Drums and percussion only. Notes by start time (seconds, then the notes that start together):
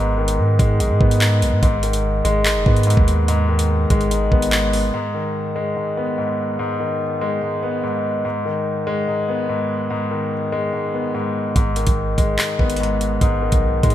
0.28 closed hi-hat
0.59 kick, closed hi-hat
0.80 closed hi-hat
1.01 kick
1.11 closed hi-hat
1.21 clap
1.42 closed hi-hat
1.63 kick, closed hi-hat
1.83 closed hi-hat
1.93 closed hi-hat
2.25 closed hi-hat
2.45 clap, closed hi-hat
2.66 kick
2.76 closed hi-hat
2.83 closed hi-hat
2.90 closed hi-hat
2.97 kick
3.08 closed hi-hat
3.28 closed hi-hat
3.59 closed hi-hat
3.90 kick, closed hi-hat
4.01 closed hi-hat
4.11 closed hi-hat
4.32 kick
4.42 closed hi-hat
4.52 clap
4.73 open hi-hat
11.56 kick, closed hi-hat
11.76 closed hi-hat
11.87 kick, closed hi-hat
12.18 kick, closed hi-hat
12.39 clap, closed hi-hat
12.59 kick
12.70 closed hi-hat
12.77 closed hi-hat
12.83 closed hi-hat
13.01 closed hi-hat
13.21 kick, closed hi-hat
13.52 kick, closed hi-hat
13.83 kick, closed hi-hat
13.90 closed hi-hat